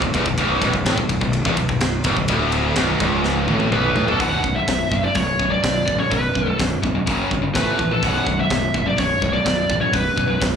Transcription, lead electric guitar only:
3.74 B4
4.08 A4
4.19 F#5
4.56 E5
5.04 D5
5.16 C#5
5.51 D5
6.00 C#5
6.11 B4
7.55 B4
7.92 A4
8.04 F#5
8.40 E5
8.87 D5
8.99 C#5
9.33 D5
9.81 C#5
9.93 B4

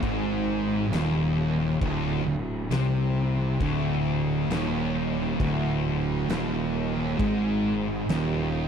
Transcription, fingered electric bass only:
0.03 G#1
0.91 D#1
1.81 D1
2.25 D1
2.69 C2
3.60 D1
4.50 D#1
5.40 D1
6.29 D#1
7.19 G#1
8.09 D#1

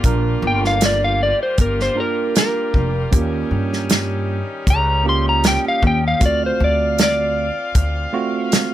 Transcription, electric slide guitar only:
0.47 G5
0.67 F5
0.85 D5
1.04 F5
1.23 D5
1.43 C5
1.61 A#4
1.82 C5
2.00 A#4
2.38 A#4
4.70 A#5
5.09 C6
5.29 A#5
5.47 G5
5.68 F5
5.87 G5
6.08 F5
6.26 D5
6.46 C5
6.64 D5
7.03 D5

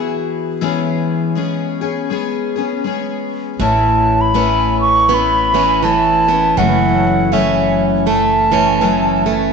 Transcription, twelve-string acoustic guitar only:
Already playing: E3 B3 F#4 G#4
0.61 E3 G#3 B3 C#4 G#4
1.35 G#3 B3 C#4 G#4
1.81 B3 C#4 G#4
2.10 G#3 B3 C#4 G#4
2.56 B3 C#4 G#4
2.84 G#3 B3 C#4 G#4
3.60 A3 C#4 E4 B4
4.34 A3 C#4 E4 B4
5.09 A3 C#4 E4 B4
5.54 C#4 E4 B4
5.83 A3 C#4 E4 B4
6.29 C#4 E4 B4
6.58 F#2 C#3 E3 A3 C#4 A4
7.32 F#2 C#3 E3 A3 C#4 A4
8.06 E3 A3 C#4 A4
8.52 E3 A3 C#4 A4
8.81 F#2 C#3 E3 A3 C#4 A4
9.26 E3 A3 C#4 A4

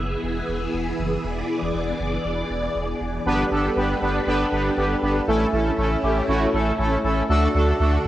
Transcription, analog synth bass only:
0.00 F#1
0.23 E1
0.49 E1
0.74 E1
0.99 F#1
1.24 E1
1.62 E1
1.75 E1
2.00 F#1
2.25 E1
2.50 E1
2.76 E1
3.01 E1
3.26 G1
3.51 G1
3.76 G1
4.02 G1
4.27 G1
4.52 G1
4.77 G1
5.03 G1
5.28 A1
5.53 A1
5.78 A1
6.03 A1
6.28 A1
6.54 A1
6.79 A1
7.04 A1
7.29 D2
7.55 D2
7.80 D2

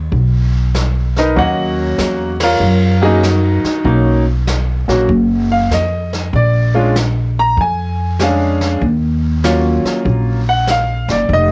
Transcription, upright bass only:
0.12 B1
1.36 D#2
1.98 E2
2.60 F#2
3.64 muted upright bass stroke
3.84 B1
4.88 A#1
5.09 F#1
5.71 F2
6.33 A#1
7.57 F2
8.81 D#2
9.85 muted upright bass stroke
10.05 A#1
11.08 F#1
11.29 F1

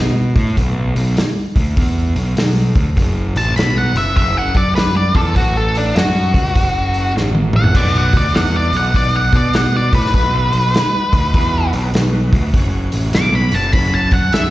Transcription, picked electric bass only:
Already playing: B2
0.36 A2
0.57 B1
0.95 B1
1.56 D2
1.77 E2
2.15 B1
2.37 B1
2.75 D2
2.97 F#1
3.35 A1
3.56 B1
3.94 F#1
4.17 F#1
4.55 F#2
5.15 E2
5.36 A1
5.96 F#2
6.34 C#2
6.55 F#1
7.15 A1
7.74 B1
8.13 D2
8.35 E2
8.72 B1
8.95 B1
9.33 B2
9.93 A2
10.14 B1
10.53 B1
11.13 D2
11.34 E2
11.73 B1
11.94 B1
12.33 D2
12.54 F#1
12.92 A1
13.14 B1
13.52 F#1
13.74 F#1
14.12 F#2

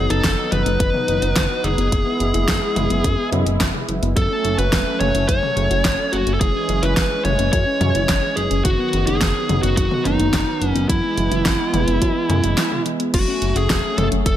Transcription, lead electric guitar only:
Already playing: G#4
0.10 A4
0.52 B4
0.80 B4
1.64 G#4
4.17 A4
4.58 B4
5.00 C#5
5.29 C#5
6.12 F#4
6.34 A4
6.40 G#4
6.83 B4
7.25 C#5
7.52 C#5
8.36 G#4
8.65 F#4
9.07 G#4
9.63 F#4
9.77 F#4
10.05 D#4
10.68 C#4
10.89 E4
13.15 F#4
13.57 G#4
13.99 A4
14.27 A4

